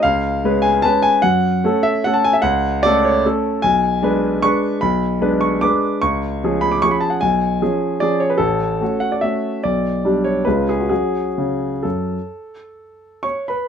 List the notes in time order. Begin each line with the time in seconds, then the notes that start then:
0.03 C#2 F5
0.44 G#3 C#4 B4
0.62 G#5
0.82 G#3 C#4 B4 A5
1.02 G#5
1.22 F#2 F#5
1.64 A3 C#4 A4
1.83 E5
2.04 A3 C#4 A4 F#5
2.13 A5
2.24 G#5
2.33 E5
2.42 C#2 F#5
2.83 A3 C#4 A4 D5
3.05 C#5
3.26 A3 C#4 A4
3.62 B1 G#5
4.02 G#3 D4 B4
4.42 G#3 D4 B4 C#6
4.81 B1 B5
5.21 G#3 D4 B4
5.41 C#6
5.61 G#3 D4 B4 D6
6.02 C#2 C#6
6.44 F3 C#4 G#4
6.61 B5
6.71 D6
6.82 F3 C#4 G#4 C#6
6.91 B5
7.00 A5
7.10 F#5
7.21 B1 G#5
7.62 F3 C#4 G#4
8.00 F3 C#4 G#4 D5
8.20 C#5
8.30 B4
8.38 A1 A4
8.81 A3 C#4 F#4
9.00 F#5
9.12 D5
9.21 A3 C#4 F#4 E5
9.64 B1 D5
10.05 G3 D4 G4
10.24 C#5
10.45 C#2 G#3 C#4 F4 B4
10.69 G#4
10.80 F#4
10.89 F#3 C#4 F#4 G#4
11.38 C#3
11.83 F#2 A4
13.23 C#5 C#6
13.48 B4 B5